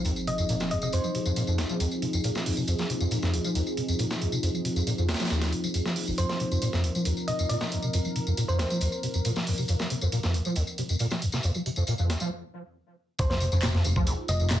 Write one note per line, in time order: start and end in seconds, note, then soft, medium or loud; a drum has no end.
0.00 12.27 F3 medium
0.00 12.27 C4 medium
0.00 12.27 D#4 medium
0.00 6.16 G#4 medium
0.00 sub drop medium
0.05 0.11 D#2 medium
0.05 closed hi-hat medium
0.05 tambourine soft
0.16 tambourine soft
0.27 0.31 C3 medium
0.27 0.45 D#5 medium
0.27 closed hi-hat medium
0.38 0.44 F2 medium
0.38 tambourine medium
0.49 0.55 A#2 medium
0.49 closed hi-hat medium
0.49 tambourine soft
0.60 0.72 F3 medium
0.60 snare soft
0.60 tambourine soft
0.71 0.77 D#2 medium
0.71 0.78 D#5 medium
0.71 closed hi-hat medium
0.82 0.88 C3 medium
0.82 0.89 D#5 medium
0.82 tambourine medium
0.93 0.99 F2 loud
0.93 1.37 C5 medium
0.93 closed hi-hat medium
0.93 tambourine soft
1.04 1.10 F3 medium
1.04 tambourine soft
1.15 1.19 C3 medium
1.15 closed hi-hat medium
1.26 1.32 F2 medium
1.26 tambourine medium
1.36 1.43 A#2 loud
1.36 closed hi-hat medium
1.36 tambourine soft
1.47 1.60 F2 medium
1.47 tambourine soft
1.58 1.65 D#2 medium
1.58 snare medium
1.58 closed hi-hat medium
1.69 1.78 F3 loud
1.69 tambourine medium
1.80 1.86 D#2 medium
1.80 closed hi-hat medium
1.80 tambourine soft
1.91 tambourine soft
2.02 2.06 C3 medium
2.02 closed hi-hat medium
2.13 2.19 F2 medium
2.13 tambourine medium
2.24 2.30 A#2 medium
2.24 closed hi-hat medium
2.24 tambourine soft
2.35 2.47 F3 medium
2.35 snare soft
2.35 tambourine soft
2.46 2.52 D#2 medium
2.46 open hi-hat medium
2.57 2.63 C3 medium
2.57 tambourine medium
2.68 2.74 F2 medium
2.68 closed hi-hat medium
2.68 tambourine soft
2.79 2.85 F3 medium
2.79 snare soft
2.79 tambourine soft
2.90 2.93 C3 medium
2.90 closed hi-hat medium
3.00 3.07 F2 medium
3.00 tambourine medium
3.11 3.18 A#2 loud
3.11 closed hi-hat medium
3.11 tambourine soft
3.22 3.35 F2 medium
3.22 snare soft
3.22 tambourine soft
3.33 3.40 D#2 medium
3.33 closed hi-hat medium
3.44 3.53 F3 medium
3.44 tambourine medium
3.55 3.62 D#2 medium
3.55 closed hi-hat medium
3.55 tambourine soft
3.67 tambourine soft
3.77 3.81 C3 medium
3.77 closed hi-hat medium
3.88 3.94 F2 medium
3.88 tambourine medium
3.99 4.05 A#2 medium
3.99 closed hi-hat medium
3.99 tambourine soft
4.10 4.22 F3 medium
4.10 snare soft
4.10 tambourine soft
4.21 4.27 D#2 medium
4.21 closed hi-hat medium
4.32 4.38 C3 medium
4.32 tambourine medium
4.43 4.49 F2 loud
4.43 closed hi-hat medium
4.43 tambourine soft
4.54 4.60 F3 medium
4.54 tambourine soft
4.65 4.69 C3 medium
4.65 closed hi-hat medium
4.76 4.82 F2 medium
4.76 tambourine medium
4.87 4.93 A#2 loud
4.87 closed hi-hat medium
4.87 tambourine soft
4.98 5.10 F2 medium
4.98 tambourine soft
5.09 5.15 D#2 medium
5.09 snare medium
5.09 closed hi-hat medium
5.14 snare medium
5.14 closed hi-hat medium
5.20 5.29 F3 loud
5.20 snare medium
5.20 closed hi-hat medium
5.20 tambourine medium
5.25 snare medium
5.25 closed hi-hat medium
5.30 5.54 D#2 medium
5.30 snare medium
5.30 closed hi-hat medium
5.30 tambourine soft
5.42 snare medium
5.42 closed hi-hat medium
5.42 tambourine soft
5.52 5.59 F3 medium
5.52 closed hi-hat medium
5.64 5.67 F3 medium
5.64 tambourine medium
5.74 5.81 F2 medium
5.74 closed hi-hat medium
5.74 tambourine soft
5.85 5.98 F3 medium
5.85 snare soft
5.85 tambourine soft
5.96 6.03 D#3 medium
5.96 open hi-hat medium
6.08 6.11 F1 medium
6.08 tambourine medium
6.18 6.24 F2 medium
6.18 12.29 A#4 medium
6.18 6.25 C5 medium
6.18 closed hi-hat medium
6.18 tambourine soft
6.29 6.36 F3 medium
6.29 6.36 C5 medium
6.29 snare soft
6.29 tambourine soft
6.40 6.44 C3 medium
6.40 closed hi-hat medium
6.51 6.57 F2 medium
6.51 tambourine medium
6.62 6.68 A#2 loud
6.62 closed hi-hat medium
6.62 tambourine soft
6.73 6.86 F2 medium
6.73 snare soft
6.73 tambourine soft
6.84 6.90 D#2 medium
6.84 closed hi-hat medium
6.95 7.04 F3 loud
6.95 tambourine medium
7.05 7.12 D#2 medium
7.05 closed hi-hat medium
7.05 tambourine soft
7.17 tambourine soft
7.28 7.32 C3 medium
7.28 7.45 D#5 medium
7.28 closed hi-hat medium
7.39 7.45 F2 medium
7.39 tambourine medium
7.49 7.56 A#2 medium
7.49 7.67 D#5 medium
7.49 closed hi-hat medium
7.49 tambourine soft
7.61 7.73 F3 medium
7.61 snare soft
7.61 tambourine soft
7.72 7.78 D#2 medium
7.72 closed hi-hat medium
7.83 7.89 C3 medium
7.83 tambourine medium
7.93 8.00 F2 loud
7.93 closed hi-hat medium
7.93 tambourine soft
8.05 8.11 F3 medium
8.05 tambourine soft
8.16 8.19 C3 medium
8.16 closed hi-hat medium
8.27 8.33 F2 medium
8.27 tambourine medium
8.37 8.44 A#2 loud
8.37 closed hi-hat medium
8.37 tambourine soft
8.48 8.61 F2 loud
8.48 8.55 C5 medium
8.48 tambourine soft
8.59 8.65 D#2 medium
8.59 8.66 C5 medium
8.59 snare soft
8.59 closed hi-hat medium
8.70 8.79 F3 loud
8.70 tambourine medium
8.81 8.87 D#2 medium
8.81 closed hi-hat medium
8.81 tambourine soft
8.92 tambourine soft
9.03 9.07 C3 medium
9.03 closed hi-hat medium
9.14 9.20 F2 medium
9.14 tambourine medium
9.25 9.31 A#2 loud
9.25 closed hi-hat medium
9.25 tambourine soft
9.36 9.48 F3 medium
9.36 snare soft
9.36 tambourine soft
9.47 9.53 D#2 medium
9.47 open hi-hat medium
9.58 9.64 C3 medium
9.58 tambourine medium
9.68 9.75 F2 loud
9.68 closed hi-hat medium
9.68 tambourine soft
9.79 9.86 F3 medium
9.79 snare soft
9.79 tambourine soft
9.90 9.94 C3 medium
9.90 closed hi-hat medium
10.01 10.08 F2 medium
10.01 tambourine medium
10.12 10.19 A#2 loud
10.12 closed hi-hat medium
10.12 tambourine soft
10.23 10.36 F2 medium
10.23 snare soft
10.23 tambourine soft
10.34 10.41 D#2 medium
10.34 closed hi-hat medium
10.45 10.55 F3 loud
10.45 tambourine medium
10.56 10.62 D#2 loud
10.56 closed hi-hat medium
10.56 tambourine soft
10.67 tambourine soft
10.78 10.82 C3 medium
10.78 closed hi-hat medium
10.89 10.95 F2 medium
10.89 tambourine medium
10.99 11.06 A#2 loud
10.99 closed hi-hat medium
10.99 tambourine soft
11.11 11.24 F3 medium
11.11 snare soft
11.11 tambourine soft
11.22 11.28 D#2 medium
11.22 closed hi-hat medium
11.32 11.39 C3 medium
11.32 snare soft
11.32 tambourine medium
11.43 11.50 F2 loud
11.43 closed hi-hat medium
11.43 tambourine soft
11.54 11.61 F3 medium
11.54 tambourine soft
11.66 11.70 C3 medium
11.66 closed hi-hat medium
11.76 11.83 F2 medium
11.76 tambourine medium
11.87 11.94 A#2 loud
11.87 closed hi-hat medium
11.87 tambourine soft
11.98 12.12 F2 loud
11.98 tambourine soft
12.10 12.16 D#2 medium
12.10 snare soft
12.10 closed hi-hat medium
12.20 12.30 F3 loud
12.20 tambourine medium
13.19 13.47 F1 loud
13.19 13.25 F2 loud
13.19 14.60 D#4 medium
13.19 14.60 F4 medium
13.19 14.60 G#4 loud
13.19 13.26 C5 medium
13.19 kick loud
13.19 closed hi-hat medium
13.19 tambourine soft
13.30 13.36 F3 medium
13.30 13.37 C5 medium
13.30 snare soft
13.40 13.45 C3 medium
13.40 closed hi-hat medium
13.40 tambourine medium
13.52 13.80 F1 medium
13.52 13.58 F2 loud
13.52 tambourine soft
13.62 13.69 A#2 loud
13.62 snare loud
13.62 clap loud
13.62 closed hi-hat medium
13.62 tambourine soft
13.75 13.87 F2 loud
13.75 snare soft
13.84 14.12 F1 medium
13.84 13.91 D#2 medium
13.84 closed hi-hat medium
13.84 tambourine medium
13.96 14.05 F3 loud
13.96 kick loud
13.96 tambourine soft
14.07 14.13 D#2 loud
14.07 closed hi-hat medium
14.07 tambourine soft
14.28 14.60 F1 medium
14.28 14.32 C3 medium
14.28 14.46 D#5 medium
14.28 closed hi-hat medium
14.28 tambourine medium
14.40 14.46 F2 medium
14.40 tambourine soft
14.50 14.57 A#2 loud
14.50 snare loud
14.50 clap loud
14.50 closed hi-hat medium
14.50 tambourine soft